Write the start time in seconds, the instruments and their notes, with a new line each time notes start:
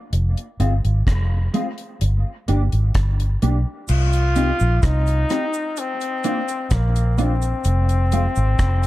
0.13 fingered electric bass F1, closed hi-hat
0.37 closed hi-hat
0.60 fingered electric bass G1, clean electric guitar G#3 C4 F4, closed hi-hat
0.85 fingered electric bass G#1, closed hi-hat
1.07 fingered electric bass F1, kick, cross-stick, closed hi-hat
1.54 clean electric guitar G#3 C4 F4, closed hi-hat
1.78 closed hi-hat
2.01 fingered electric bass G1, closed hi-hat
2.48 fingered electric bass G1, clean electric guitar A#3 D4 G4, closed hi-hat
2.72 fingered electric bass G#1, closed hi-hat
2.95 fingered electric bass G1, kick, cross-stick, closed hi-hat
3.20 closed hi-hat
3.42 fingered electric bass B1, clean electric guitar A#3 D4 G4, closed hi-hat
3.88 fingered electric bass C2, trombone F4, crash, cabasa
4.13 closed hi-hat, cabasa
4.36 clean electric guitar C4 D#4 G4, closed hi-hat, cabasa
4.60 fingered electric bass A#1, cabasa
4.83 fingered electric bass C2, trombone D#4, kick, cross-stick, closed hi-hat, cabasa
5.07 closed hi-hat, cabasa
5.29 clean electric guitar C4 D#4 G4, cross-stick, closed hi-hat, cabasa
5.54 cabasa
5.76 trombone C4, closed hi-hat, cabasa
6.01 closed hi-hat, cabasa
6.24 clean electric guitar A#3 D4 F4, closed hi-hat, cabasa
6.48 closed hi-hat, cabasa
6.70 fingered electric bass A#1, trombone A#3, kick, cross-stick, closed hi-hat, cabasa
6.96 closed hi-hat, cabasa
7.18 clean electric guitar A#3 D4 F4, trombone C4, closed hi-hat, cabasa
7.42 closed hi-hat, cabasa
7.64 fingered electric bass F1, closed hi-hat, cabasa
7.89 closed hi-hat, cabasa
8.12 clean electric guitar G#3 C4 F4, closed hi-hat, cabasa
8.36 fingered electric bass G#1, cabasa
8.59 fingered electric bass F1, kick, cross-stick, closed hi-hat, cabasa
8.83 closed hi-hat, cabasa